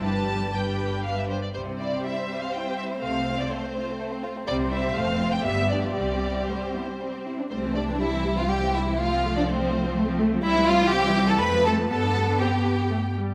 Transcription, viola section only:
\new Staff \with { instrumentName = "Viola section" } { \time 3/4 \key c \major \tempo 4 = 121 << { d'4 d'4. r8 | c'2.~ | c'2. | c'2 b4 |
c'2~ c'8 r8 | g16 c'16 g16 c'16 g16 c'16 g16 c'16 g16 c'16 g16 c'16 | a16 c'16 a16 c'16 a16 c'16 a16 c'16 a16 c'16 a16 c'16 | c'16 e'16 c'16 e'16 c'16 e'16 c'16 e'16 c'16 a16 c'16 a16 |
b16 d'16 b16 d'16 c'8 b8 a8 g8 | } \\ { g4 g4. r8 | g2. | a2. | g4 a4 g4~ |
g2~ g8 r8 | g16 e16 g16 e16 g16 e16 g16 e16 g16 e16 g16 e16 | a16 f16 a16 f16 a16 f16 a16 f16 a16 f16 a16 f16 | g16 e16 g16 e16 g16 e16 g16 e16 a16 f16 a16 f16 |
g16 d16 g16 d16 r2 | } >> }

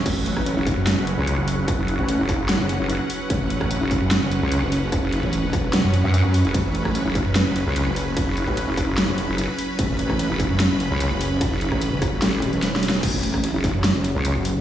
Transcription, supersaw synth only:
\new Staff \with { instrumentName = "Supersaw synth" } { \time 4/4 \key fis \minor \tempo 4 = 148 << { fis''1~ | fis''1~ | fis''1~ | fis''1 |
b''1~ | b''1~ | b''1~ | b''1 |
fis''1 | } \\ { <fis cis' b'>1~ | <fis cis' b'>1~ | <fis cis' b'>1~ | <fis cis' b'>1~ |
<fis cis' b'>1~ | <fis cis' b'>1~ | <fis cis' b'>1~ | <fis cis' b'>1 |
<fis cis' cis''>1 | } >> }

